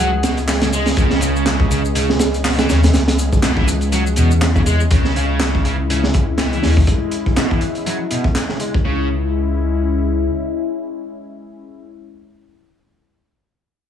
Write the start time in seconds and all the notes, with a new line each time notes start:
Already playing: C#2 G#3 C#4 G#4
0.13 F#5
0.23 B2, snare, closed hi-hat, shaker
0.37 closed hi-hat, shaker
0.47 snare, clap, open hi-hat, shaker
0.61 C#3, snare, closed hi-hat, shaker
0.73 G#3, closed hi-hat, shaker
0.86 snare, open hi-hat, shaker
0.97 C#2 C#3, kick, closed hi-hat, shaker
1.10 snare
1.21 C#3, closed hi-hat, shaker
1.36 shaker
1.46 snare, clap, closed hi-hat, shaker
1.60 kick
1.71 C#3, closed hi-hat, shaker
1.85 shaker
1.95 C#3, closed hi-hat, shaker
2.10 snare
2.19 snare, closed hi-hat, shaker
2.34 closed hi-hat, shaker
2.44 B2, snare, clap, open hi-hat, shaker
2.59 E3, snare, closed hi-hat, shaker
2.69 D#2 C#3, snare, closed hi-hat, shaker
2.83 snare, closed hi-hat, shaker
2.94 C#2, snare, closed hi-hat, shaker
3.08 snare, closed hi-hat
3.19 closed hi-hat, shaker
3.33 kick, shaker
3.43 C#2 B2, snare, clap, closed hi-hat, shaker
3.57 E3, kick
3.68 closed hi-hat, shaker
3.81 closed hi-hat, shaker
3.92 F#3, closed hi-hat, shaker
4.07 shaker
4.16 E2 B2, closed hi-hat, shaker
4.31 shaker
4.41 snare, clap, closed hi-hat, shaker
4.56 C#3, kick, shaker
4.66 G#3, closed hi-hat, shaker
4.80 shaker
4.90 C#2 C#3 G#3 C#4 E4, kick, closed hi-hat
5.04 snare
5.16 C#3, closed hi-hat
5.40 snare, clap, closed hi-hat
5.55 kick
5.65 C#3, closed hi-hat
5.90 C#3, closed hi-hat
6.04 snare
6.14 kick, closed hi-hat
6.38 B2, snare, clap, closed hi-hat
6.53 E3, closed hi-hat
6.63 D#2 C#3, snare, open hi-hat
6.77 kick
6.87 kick, closed hi-hat
7.11 closed hi-hat
7.26 kick
7.36 B2, snare, clap, closed hi-hat
7.51 E3, kick
7.61 closed hi-hat
7.75 closed hi-hat
7.86 F#3, closed hi-hat
8.11 B2, closed hi-hat
8.24 kick
8.35 snare, clap, closed hi-hat
8.49 C#3, snare
8.60 G#3, closed hi-hat
8.74 kick
8.85 C#2 C#3 G#3 C#4 E4